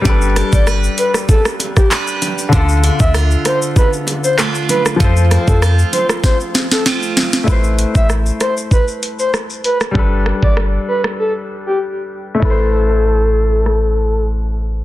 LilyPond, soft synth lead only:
\new Staff \with { instrumentName = "Soft synth lead" } { \time 4/4 \key a \minor \tempo 4 = 97 r8. d''16 r8 b'16 r16 a'16 r8 g'16 r4 | r8. e''16 r8 c''16 r16 b'16 r8 c''16 r8 b'16 r16 | r8. a'16 r8 c''16 r16 c''16 r8 a'16 r4 | r8. e''16 r8 c''16 r16 b'16 r8 c''16 r8 b'16 r16 |
r8. d''16 r8 b'16 r16 a'16 r8 g'16 r4 | a'2. r4 | }